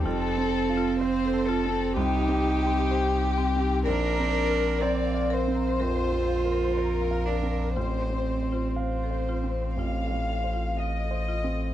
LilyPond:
<<
  \new Staff \with { instrumentName = "Violin section" } { \time 4/4 \key bes \major \tempo 4 = 62 a'4 c''8 a'8 g'2 | bes'4 d''8 c''4. bes'4 | c''4 c''4 f''4 ees''4 | }
  \new Staff \with { instrumentName = "Marimba" } { \time 4/4 \key bes \major f'16 r16 c''16 f'16 c''16 a'16 f'16 c''16 c'16 ees'16 ees'16 c'16 c''16 ees'16 c'16 ees'16 | bes'16 r16 bes''16 bes'16 bes''16 f''16 bes'16 bes''16 bes'16 f''16 f''16 bes'16 c'''16 f''16 bes'16 f''16 | f'16 r16 c''16 f'16 c''16 a'16 f'16 c''16 f'16 a'16 a'16 f'16 f''16 a'16 f'16 a'16 | }
  \new Staff \with { instrumentName = "Grand piano" } { \time 4/4 \key bes \major \tuplet 3/2 { f,8 c'8 f'8 c''8 a'8 c'8 c,8 c'8 g'8 c''8 g'8 c'8 } | \tuplet 3/2 { bes,,8 c'8 bes'8 c''8 f''8 c'8 f,8 c'8 bes'8 c''8 f''8 c'8 } | \tuplet 3/2 { a,,8 c'8 c''8 f''8 c''8 c'8 a,,8 a,8 c''8 f''8 c''8 c'8 } | }
  \new Staff \with { instrumentName = "Cello" } { \time 4/4 \key bes \major c'2 ees'4. r8 | d'4 c'4 f'4. d'8 | c'2. r4 | }
  \new Staff \with { instrumentName = "Sub bass" } { \clef bass \time 4/4 \key bes \major f,,2 c,2 | bes,,1 | a,,1 | }
>>